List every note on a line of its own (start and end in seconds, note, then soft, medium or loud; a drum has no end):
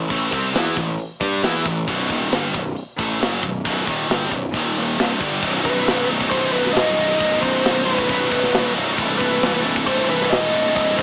0.09 0.31 A1 medium
0.09 0.31 A2 medium
0.09 0.32 A2 medium
0.09 0.32 E3 loud
0.09 0.32 A3 loud
0.09 0.33 A3 medium
0.09 kick loud
0.09 open hi-hat medium
0.32 0.53 C2 medium
0.32 0.54 C3 medium
0.32 0.54 G3 loud
0.32 0.54 C4 loud
0.32 0.55 C4 medium
0.32 kick medium
0.32 open hi-hat medium
0.54 0.75 E2 medium
0.54 0.75 E3 loud
0.54 0.76 E3 medium
0.54 0.76 B3 loud
0.54 0.77 B3 medium
0.54 0.76 E4 loud
0.54 0.77 E4 medium
0.54 snare loud
0.54 open hi-hat medium
0.76 0.97 A1 medium
0.76 0.94 A2 medium
0.76 0.95 A2 medium
0.76 0.94 E3 medium
0.76 0.95 E3 medium
0.76 kick medium
0.76 snare soft
0.76 open hi-hat medium
0.99 open hi-hat medium
1.20 1.42 G2 medium
1.20 1.42 G3 medium
1.20 1.43 G3 medium
1.20 1.43 D4 loud
1.20 1.43 D4 medium
1.20 1.43 G4 loud
1.20 kick loud
1.20 snare soft
1.20 open hi-hat medium
1.43 1.64 E2 medium
1.43 1.64 E3 medium
1.43 1.65 E3 medium
1.43 1.65 B3 medium
1.43 1.65 E4 medium
1.43 1.66 E4 loud
1.43 snare loud
1.43 open hi-hat medium
1.65 1.86 A1 medium
1.65 1.83 A2 medium
1.65 1.84 A2 medium
1.65 1.83 E3 medium
1.65 1.84 E3 medium
1.65 kick medium
1.65 open hi-hat medium
1.87 2.08 B0 medium
1.87 2.09 B1 loud
1.87 2.09 F#2 loud
1.87 2.10 F#2 loud
1.87 2.09 B2 loud
1.87 2.10 B2 loud
1.87 kick medium
1.87 open hi-hat medium
2.09 2.30 D#1 medium
2.09 2.31 D#2 medium
2.09 2.31 A#2 medium
2.09 2.32 A#2 medium
2.09 2.31 D#3 loud
2.09 2.32 D#3 loud
2.09 kick medium
2.09 open hi-hat medium
2.31 2.53 G1 medium
2.31 2.53 G2 medium
2.31 2.54 G2 medium
2.31 2.54 D3 loud
2.31 2.54 D3 medium
2.31 2.54 G3 loud
2.31 snare loud
2.31 open hi-hat medium
2.53 2.75 B0 medium
2.53 2.72 B1 medium
2.53 2.72 F#2 medium
2.53 kick medium
2.53 snare soft
2.53 open hi-hat medium
2.76 open hi-hat medium
2.97 3.19 A1 medium
2.97 3.19 A2 medium
2.97 3.20 A2 medium
2.97 3.20 E3 loud
2.97 3.21 E3 medium
2.97 3.20 A3 loud
2.97 3.21 A3 medium
2.97 kick loud
2.97 open hi-hat medium
3.20 3.41 F#1 medium
3.20 3.42 F#2 medium
3.20 3.42 C#3 medium
3.20 3.43 C#3 medium
3.20 3.42 F#3 loud
3.20 3.43 F#3 loud
3.20 snare loud
3.20 open hi-hat medium
3.42 3.64 B0 medium
3.42 3.60 B1 medium
3.42 3.61 B1 medium
3.42 3.61 F#2 medium
3.42 kick medium
3.42 open hi-hat medium
3.65 3.86 B0 medium
3.65 3.86 B1 medium
3.65 3.87 F#2 medium
3.65 3.87 F#2 loud
3.65 3.87 B2 loud
3.65 kick loud
3.65 open hi-hat medium
3.87 4.08 D#1 medium
3.87 4.09 D#2 medium
3.87 4.08 D#2 medium
3.87 4.09 A#2 medium
3.87 4.09 D#3 medium
3.87 4.09 D#3 loud
3.87 kick loud
3.87 open hi-hat medium
4.08 4.30 G1 medium
4.08 4.30 G2 medium
4.08 4.31 G2 medium
4.08 4.31 D3 loud
4.08 4.32 D3 medium
4.08 4.31 G3 loud
4.08 4.32 G3 medium
4.08 snare loud
4.08 open hi-hat medium
4.31 4.52 B0 medium
4.31 4.49 B1 medium
4.31 4.50 B1 medium
4.31 4.49 F#2 medium
4.31 4.50 F#2 medium
4.31 kick medium
4.31 open hi-hat medium
4.51 4.95 D#1 loud
4.51 4.96 D#2 medium
4.51 4.98 D#2 loud
4.51 4.97 A#2 medium
4.51 4.97 D#3 loud
4.51 kick loud
4.51 open hi-hat medium
4.56 4.99 A#2 medium
4.56 4.99 D#3 loud
4.77 snare soft
4.77 open hi-hat medium
4.97 5.19 C1 medium
4.97 5.19 C2 medium
4.97 5.21 C2 medium
4.97 5.19 G2 medium
4.97 5.21 G2 medium
4.97 5.20 C3 medium
4.97 snare loud
4.97 open hi-hat medium
5.01 5.21 C3 loud
5.20 5.41 G1 loud
5.20 5.42 G2 medium
5.20 5.43 G2 loud
5.20 5.42 D3 medium
5.20 5.43 D3 loud
5.20 5.42 G3 loud
5.20 5.44 G3 loud
5.20 kick loud
5.20 open hi-hat medium
5.42 5.63 B0 medium
5.42 5.51 B1 medium
5.42 5.52 F#2 medium
5.42 5.50 F#3 medium
5.42 5.50 D#4 medium
5.42 kick loud
5.42 crash loud
5.42 crash medium
5.51 5.59 B1 medium
5.51 5.60 F#2 medium
5.51 5.58 F#3 medium
5.51 5.57 D#4 medium
5.58 5.67 B1 medium
5.58 5.67 F#2 medium
5.58 5.65 F#3 medium
5.58 5.64 D#4 medium
5.64 5.85 B0 medium
5.64 5.75 B1 medium
5.64 5.75 F#2 medium
5.64 5.72 F#3 medium
5.64 5.72 D#4 medium
5.64 6.06 B4 loud
5.64 kick medium
5.64 crash medium
5.73 5.82 B1 medium
5.73 5.82 F#2 medium
5.73 5.80 F#3 medium
5.73 5.80 D#4 medium
5.81 5.90 B1 medium
5.81 5.90 F#2 medium
5.81 5.87 F#3 medium
5.81 5.88 D#4 medium
5.87 6.07 B0 medium
5.87 5.97 B1 medium
5.87 5.98 F#2 medium
5.87 5.96 F#3 medium
5.87 5.95 D#4 medium
5.87 snare loud
5.87 crash medium
5.95 6.05 B1 medium
5.95 6.06 F#2 medium
5.95 6.03 F#3 medium
5.95 6.03 D#4 medium
6.04 6.13 B1 medium
6.04 6.14 F#2 medium
6.04 6.11 F#3 medium
6.04 6.12 D#4 medium
6.09 6.30 B0 medium
6.09 6.20 F#3 medium
6.09 6.19 D#4 medium
6.09 crash medium
6.14 6.19 B1 medium
6.14 6.21 F#2 medium
6.20 6.27 B1 medium
6.20 6.29 F#2 medium
6.20 6.26 F#3 medium
6.20 6.27 D#4 medium
6.20 kick medium
6.26 6.35 B1 medium
6.26 6.36 F#2 medium
6.26 6.34 F#3 medium
6.26 6.34 D#4 medium
6.26 6.52 C5 medium
6.31 6.52 B0 medium
6.31 6.42 F#3 medium
6.31 6.42 D#4 medium
6.31 kick loud
6.31 crash medium
6.36 6.43 B1 medium
6.36 6.44 F#2 medium
6.42 6.51 B1 medium
6.42 6.52 F#2 medium
6.42 6.49 F#3 medium
6.42 6.49 D#4 medium
6.50 6.74 B0 medium
6.50 6.59 B1 medium
6.50 6.59 F#2 medium
6.50 6.57 F#3 medium
6.50 6.57 D#4 medium
6.50 6.76 B4 medium
6.54 crash medium
6.58 6.66 B1 medium
6.58 6.67 F#2 medium
6.58 6.64 F#3 medium
6.58 6.65 D#4 medium
6.64 6.73 B1 medium
6.64 6.73 F#2 medium
6.64 6.72 F#3 medium
6.64 6.73 D#4 medium
6.64 snare soft
6.72 6.96 D#1 loud
6.72 6.81 B1 medium
6.72 6.81 F#2 medium
6.72 6.80 F#3 medium
6.72 6.81 D#4 medium
6.72 7.16 D#5 loud
6.72 crash medium
6.77 6.88 F#3 medium
6.77 snare loud
6.81 6.89 B1 medium
6.81 6.89 F#2 medium
6.81 6.89 D#4 medium
6.89 6.96 B1 medium
6.89 6.97 F#2 medium
6.89 6.96 F#3 medium
6.89 6.95 D#4 medium
6.96 7.17 B0 loud
6.96 7.04 B1 medium
6.96 7.04 F#2 medium
6.96 7.02 F#3 medium
6.96 7.04 D#4 medium
6.96 crash medium
7.03 7.12 B1 medium
7.03 7.12 F#2 medium
7.03 7.10 F#3 medium
7.03 7.11 D#4 medium
7.11 7.20 B1 medium
7.11 7.21 F#2 medium
7.11 7.19 F#3 medium
7.11 7.20 D#4 medium
7.18 7.40 B0 loud
7.18 7.28 B1 medium
7.18 7.27 F#3 medium
7.18 7.27 D#4 loud
7.18 7.42 D#5 loud
7.18 kick loud
7.18 crash medium
7.22 7.28 F#2 medium
7.28 7.36 B1 medium
7.28 7.36 F#2 medium
7.28 7.35 F#3 medium
7.28 7.36 D#4 medium
7.35 7.44 B1 medium
7.35 7.44 F#2 medium
7.35 7.42 F#3 medium
7.35 7.44 D#4 medium
7.40 7.63 B0 medium
7.40 7.51 F#3 medium
7.40 7.85 C5 loud
7.40 kick medium
7.40 crash medium
7.45 7.51 B1 medium
7.45 7.51 F#2 medium
7.45 7.51 D#4 medium
7.51 7.59 B1 medium
7.51 7.59 F#2 medium
7.51 7.59 F#3 medium
7.51 7.58 D#4 medium
7.59 7.67 B1 medium
7.59 7.67 F#2 medium
7.59 7.66 F#3 medium
7.59 7.66 D#4 medium
7.65 7.85 B0 medium
7.65 7.74 B1 medium
7.65 7.75 F#2 medium
7.65 7.74 F#3 medium
7.65 7.74 D#4 medium
7.65 snare loud
7.65 crash medium
7.74 7.82 B1 medium
7.74 7.83 F#2 medium
7.74 7.82 F#3 medium
7.74 7.82 D#4 medium
7.82 7.90 B1 medium
7.82 7.91 F#2 medium
7.82 7.90 F#3 medium
7.82 7.90 D#4 medium
7.82 8.71 B4 medium
7.86 8.07 B0 medium
7.86 7.97 F#3 medium
7.86 crash medium
7.91 7.98 B1 medium
7.91 7.98 F#2 medium
7.91 7.98 D#4 medium
7.97 8.06 B1 medium
7.97 8.06 F#2 medium
7.97 8.05 F#3 medium
7.97 8.04 D#4 medium
7.97 kick medium
8.05 8.13 B1 medium
8.05 8.14 F#2 medium
8.05 8.13 F#3 medium
8.05 8.12 D#4 medium
8.09 8.29 B0 loud
8.09 kick medium
8.09 crash medium
8.13 8.21 B1 medium
8.13 8.22 F#2 medium
8.13 8.21 F#3 medium
8.13 8.21 D#4 medium
8.21 8.28 B1 medium
8.21 8.29 F#2 medium
8.21 8.28 F#3 medium
8.21 8.28 D#4 medium
8.28 8.52 B0 medium
8.28 8.36 B1 medium
8.28 8.37 F#2 medium
8.28 8.36 F#3 medium
8.28 8.36 D#4 medium
8.28 kick medium
8.28 crash medium
8.36 8.44 B1 medium
8.36 8.45 F#2 medium
8.36 8.44 F#3 medium
8.36 8.44 D#4 medium
8.43 8.51 B1 medium
8.43 8.53 F#2 medium
8.43 8.52 F#3 medium
8.43 8.52 D#4 medium
8.43 snare soft
8.51 8.74 D#1 medium
8.51 8.59 B1 medium
8.51 8.61 F#2 medium
8.51 8.59 F#3 medium
8.51 8.60 D#4 medium
8.51 snare loud
8.51 crash medium
8.60 8.68 B1 medium
8.60 8.68 F#2 medium
8.60 8.67 F#3 medium
8.60 8.67 D#4 medium
8.67 8.74 B1 medium
8.67 8.76 F#2 medium
8.67 8.74 F#3 medium
8.67 8.74 D#4 medium
8.74 8.96 B0 loud
8.74 8.82 B1 medium
8.74 8.83 F#2 medium
8.74 8.82 F#3 medium
8.74 8.82 D#4 medium
8.74 crash medium
8.83 8.90 B1 medium
8.83 8.91 F#2 medium
8.83 8.90 F#3 medium
8.83 8.91 D#4 medium
8.90 8.98 B1 medium
8.90 8.99 F#2 medium
8.90 8.98 F#3 medium
8.90 8.98 D#4 medium
8.98 9.19 C1 loud
8.98 9.06 A2 medium
8.98 9.06 E3 medium
8.98 9.06 E4 medium
8.98 9.06 A4 loud
8.98 kick loud
8.98 crash medium
9.06 9.12 A2 medium
9.06 9.14 E3 medium
9.06 9.13 E4 medium
9.06 9.14 A4 medium
9.12 9.20 A2 medium
9.12 9.22 E3 medium
9.12 9.22 E4 medium
9.12 9.21 A4 medium
9.18 9.41 C1 medium
9.18 9.28 A2 medium
9.18 9.29 A4 medium
9.18 9.61 B4 loud
9.18 kick medium
9.18 crash medium
9.22 9.30 E3 medium
9.22 9.28 E4 medium
9.28 9.36 A2 medium
9.28 9.37 E3 medium
9.28 9.36 E4 medium
9.28 9.37 A4 medium
9.37 9.44 A2 medium
9.37 9.45 E3 medium
9.37 9.45 E4 medium
9.37 9.45 A4 medium
9.42 9.63 C1 medium
9.42 9.51 A2 medium
9.42 9.52 E3 medium
9.42 9.51 E4 medium
9.42 9.52 A4 medium
9.42 snare loud
9.42 crash medium
9.51 9.59 A2 medium
9.51 9.60 E3 medium
9.51 9.59 E4 medium
9.51 9.60 A4 medium
9.59 9.67 A2 medium
9.59 9.68 E3 medium
9.59 9.68 E4 medium
9.59 9.68 A4 medium
9.64 9.85 C1 medium
9.64 9.74 A2 medium
9.64 9.76 A4 medium
9.64 crash medium
9.68 9.74 E3 medium
9.68 9.75 E4 medium
9.75 9.82 A2 medium
9.75 9.83 E3 medium
9.75 9.83 E4 medium
9.75 9.84 A4 medium
9.75 kick medium
9.83 9.90 A2 medium
9.83 9.91 E3 medium
9.83 9.90 E4 medium
9.83 9.91 A4 medium
9.87 10.08 C1 loud
9.87 9.98 A2 medium
9.87 9.98 E3 medium
9.87 9.98 E4 medium
9.87 10.10 C5 loud
9.87 kick loud
9.87 crash medium
9.91 9.99 A4 medium
9.98 10.04 A2 medium
9.98 10.05 E3 medium
9.98 10.07 E4 medium
9.98 10.07 A4 medium
10.05 10.13 A2 medium
10.05 10.14 E3 medium
10.05 10.14 E4 medium
10.05 10.14 A4 medium
10.09 10.30 C1 medium
10.09 10.33 B4 medium
10.09 crash medium
10.14 10.21 A2 medium
10.14 10.22 E3 medium
10.14 10.21 E4 medium
10.14 10.22 A4 medium
10.22 10.29 A2 medium
10.22 10.29 E3 medium
10.22 10.29 E4 medium
10.22 10.29 A4 medium
10.22 snare soft
10.29 10.52 D#1 loud
10.29 10.36 A2 medium
10.29 10.36 E3 medium
10.29 10.37 E4 medium
10.29 10.37 A4 medium
10.29 10.74 D#5 loud
10.29 snare loud
10.29 crash medium
10.36 10.44 A2 medium
10.36 10.44 E3 medium
10.36 10.46 E4 medium
10.36 10.44 A4 medium
10.45 10.52 A2 medium
10.45 10.52 E3 medium
10.45 10.52 E4 medium
10.45 10.53 A4 medium
10.52 10.73 C1 medium
10.52 10.59 A2 medium
10.52 10.59 E3 medium
10.52 10.60 E4 medium
10.52 10.61 A4 medium
10.52 crash medium
10.60 10.67 A2 medium
10.60 10.67 E3 medium
10.60 10.68 E4 medium
10.60 10.68 A4 medium
10.67 10.75 A2 medium
10.67 10.75 E3 medium
10.67 10.77 E4 medium
10.67 10.76 A4 medium
10.75 10.97 C1 loud
10.75 10.83 A2 medium
10.75 10.84 E3 medium
10.75 10.84 E4 medium
10.75 10.85 A4 loud
10.75 10.99 D#5 loud
10.75 kick loud
10.75 crash medium
10.83 10.91 A2 medium
10.83 10.91 E3 medium
10.83 10.92 E4 medium
10.83 10.92 A4 medium
10.92 10.99 A2 medium
10.92 11.00 E3 medium
10.92 11.00 E4 medium
10.92 11.00 A4 medium
10.96 11.03 C1 medium
10.96 11.03 C5 loud
10.96 kick medium
10.96 crash medium